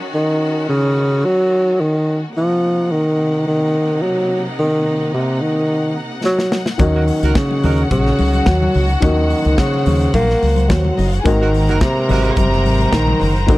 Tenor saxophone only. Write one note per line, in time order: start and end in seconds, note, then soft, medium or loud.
0.14 0.65 D#3 loud
0.69 1.26 C#3 loud
1.25 1.82 F#3 loud
1.81 2.22 D#3 loud
2.37 2.93 F3 loud
2.91 3.46 D#3 loud
3.47 4.04 D#3 loud
4.02 4.44 F#3 loud
4.59 5.10 D#3 loud
5.14 5.43 C3 medium
5.42 5.98 D#3 medium
6.25 6.64 F#3 loud
6.80 7.37 D#3 loud
7.36 7.90 C#3 loud
7.91 8.48 C#3 loud
8.47 8.89 F#3 loud
9.02 9.60 D#3 loud
9.58 10.14 C#3 loud
10.14 10.71 A#3 loud
10.69 11.12 F#3 loud
11.25 11.84 D#3 loud
11.82 12.37 C3 loud
12.38 12.95 C3 medium
12.94 13.36 D#3 loud
13.49 13.58 D#3 loud